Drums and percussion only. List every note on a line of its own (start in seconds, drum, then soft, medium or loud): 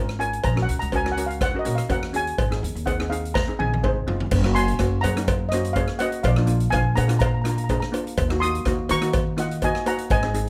0.09 cross-stick medium
0.21 closed hi-hat medium
0.33 closed hi-hat medium
0.44 kick loud
0.44 closed hi-hat medium
0.44 cowbell loud
0.57 cross-stick medium
0.69 closed hi-hat medium
0.82 closed hi-hat medium
0.92 kick medium
0.92 closed hi-hat medium
0.92 cowbell medium
1.06 cross-stick medium
1.17 closed hi-hat loud
1.30 closed hi-hat medium
1.41 kick loud
1.41 cross-stick medium
1.41 closed hi-hat medium
1.41 cowbell loud
1.65 closed hi-hat medium
1.78 cross-stick medium
1.78 closed hi-hat medium
1.90 kick medium
1.90 closed hi-hat medium
1.90 cowbell medium
2.03 cross-stick medium
2.14 closed hi-hat medium
2.27 closed hi-hat medium
2.38 kick loud
2.38 closed hi-hat medium
2.38 cowbell loud
2.52 cross-stick medium
2.64 closed hi-hat medium
2.76 closed hi-hat medium
2.87 kick medium
2.87 closed hi-hat medium
2.87 cowbell medium
3.00 cross-stick medium
3.12 closed hi-hat medium
3.25 closed hi-hat medium
3.35 kick loud
3.35 snare medium
3.35 cowbell loud
3.60 high tom medium
3.74 high tom medium
3.84 kick medium
3.84 mid tom medium
3.84 cowbell medium
4.08 floor tom medium
4.20 floor tom medium
4.31 kick loud
4.31 crash loud
4.31 cowbell medium
4.44 cross-stick medium
4.56 closed hi-hat medium
4.68 closed hi-hat medium
4.79 kick medium
4.79 cross-stick medium
4.79 closed hi-hat medium
4.79 cowbell medium
5.04 closed hi-hat loud
5.04 cowbell medium
5.17 cross-stick medium
5.17 closed hi-hat medium
5.28 kick loud
5.28 closed hi-hat medium
5.28 cowbell loud
5.52 cross-stick medium
5.52 closed hi-hat medium
5.65 closed hi-hat medium
5.76 kick medium
5.76 closed hi-hat medium
5.76 cowbell medium
5.88 cross-stick medium
5.99 closed hi-hat medium
5.99 cowbell medium
6.12 closed hi-hat medium
6.24 kick loud
6.24 closed hi-hat medium
6.24 cowbell loud
6.36 cross-stick medium
6.47 closed hi-hat medium
6.60 closed hi-hat medium
6.72 kick medium
6.72 cross-stick medium
6.72 closed hi-hat medium
6.72 cowbell medium
6.97 closed hi-hat medium
6.97 cowbell medium
7.09 cross-stick medium
7.09 closed hi-hat medium
7.20 kick loud
7.20 closed hi-hat medium
7.20 cowbell loud
7.45 cross-stick medium
7.45 closed hi-hat medium
7.58 closed hi-hat medium
7.69 kick medium
7.69 closed hi-hat medium
7.69 cowbell medium
7.82 cross-stick medium
7.94 closed hi-hat medium
7.94 cowbell medium
8.07 closed hi-hat medium
8.17 kick loud
8.17 closed hi-hat medium
8.17 cowbell medium
8.30 cross-stick loud
8.43 closed hi-hat medium
8.55 closed hi-hat medium
8.65 kick medium
8.65 cross-stick medium
8.65 closed hi-hat medium
8.65 cowbell medium
8.89 closed hi-hat loud
8.89 cowbell medium
9.02 cross-stick medium
9.02 closed hi-hat medium
9.13 kick loud
9.13 closed hi-hat medium
9.13 cowbell loud
9.38 cross-stick medium
9.38 closed hi-hat loud
9.51 closed hi-hat medium
9.62 kick medium
9.62 closed hi-hat medium
9.62 cowbell medium
9.75 cross-stick medium
9.86 closed hi-hat medium
9.86 cowbell medium
9.99 closed hi-hat medium
10.10 kick loud
10.10 closed hi-hat medium
10.10 cowbell medium
10.23 cross-stick medium
10.34 closed hi-hat medium